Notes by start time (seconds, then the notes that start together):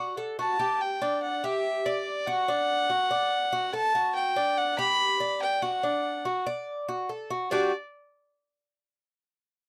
Already playing: F#4 F#5
0.17 A4
0.39 F#4 A5
0.59 G4
0.81 G5
1.02 D4
1.23 F#5
1.44 G4 E5
1.85 D5
2.27 F#4 F#5
2.48 D4
2.90 F#4
3.11 D5
3.53 F#4
3.73 A4 A5
3.95 F#4
4.15 G5
4.36 D4
4.58 F#5
4.78 G4 B5
5.20 D5
5.42 G5
5.62 F#4 F#5
5.83 D4
6.25 F#4
6.46 D5
6.88 F#4
7.09 A4
7.30 F#4
7.51 G3 D4 F#4 D5